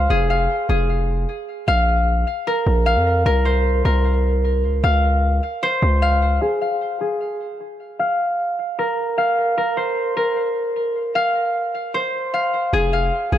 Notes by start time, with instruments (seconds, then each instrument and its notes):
Already playing: harp C5 F5
0.10 808-style bass F1, harp G#4
0.30 harp F5
0.69 808-style bass F1, harp G#4
1.68 808-style bass A#1, harp F5
2.47 harp A#4
2.67 808-style bass A#1
2.86 harp F5
2.96 808-style bass F2
3.26 808-style bass C2, harp A#4
3.45 harp C5
3.85 808-style bass C2, harp A#4
4.64 808-style bass C#2
4.84 808-style bass C#2, harp F5
5.63 harp C5
5.82 808-style bass C#2
6.02 harp F5
6.42 harp G#4
6.61 harp F5
7.01 harp G#4
7.99 harp F5
8.79 harp A#4
9.18 harp F5
9.58 harp A#4
9.77 harp C5
10.17 harp A#4
11.15 harp F5
11.94 harp C5
12.34 harp F5
12.73 808-style bass F1, harp G#4
12.93 harp F5
13.32 808-style bass F1, harp G#4